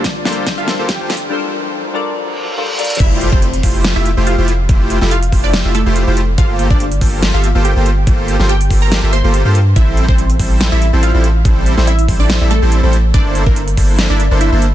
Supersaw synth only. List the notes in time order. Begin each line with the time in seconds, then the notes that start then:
0.25 A#3 F4 G4 A4 C5
0.58 A#3 F4 G4 A4 E5
0.79 A#3 F4 G4 A4 C5
1.00 A#3 F4 G4 A4 C5
3.00 A3 E4 F4 G4 C5
3.32 A3
3.63 A3 E4 F4 G4 C5
3.96 A3 E4 F4 G4 E5
4.17 A3 E4 F4 G4 C5
4.38 A3 E4 F4 G4 C5
4.69 A3 E4 F4 G4 C5
5.02 A3 E4 F4 G4 A4
5.32 A3 E4 F4 G4 C5
5.65 A3 E4 F4 G4 E5
5.86 A3 E4 F4 G4 C5
6.07 A3 E4 F4 G4 C5
6.38 A#3 F4 G4 A4 C5
7.02 A#3 F4 G4 A4 C5
7.34 A#3 F4 G4 A4 E5
7.55 A#3 F4 G4 A4 C5
7.76 A#3 F4 G4 A4 C5
8.07 A#3 F4 G4 A4 C5
8.39 A#3 F4 G4 A4 C5
8.71 A#3 F4 G4 A4 C5
9.03 A#3 F4 G4 A4 E5
9.24 A#3 F4 G4 A4 C5
9.45 A#3 F4 G4 A4 C5
9.76 G3 C4 E4 A4 C5
10.09 G3 C4 E4 A4 C5
10.40 G3 C4 E4 A4 C5
10.72 G3 C4 E4 A4 E5
10.93 G3 C4 E4 A4 C5
11.14 G3 C4 E4 A4 C5
11.45 G3 C4 E4 A4 C5
11.78 G3 C4 E4 A4 C5
12.09 G3 C4 E4 A4 C5
12.41 G3 C4 E4 A4 E5
12.62 G3 C4 E4 A4 C5
12.83 G3 C4 E4 A4 C5
13.14 A#3 D4 E4 A4 C5
13.47 E4 A4
13.77 A#3 D4 E4 A4 C5
14.10 A#3 D4 E4 A4 E5
14.31 A#3 D4 E4 A4 C5
14.52 A#3 D4 E4 A4 C5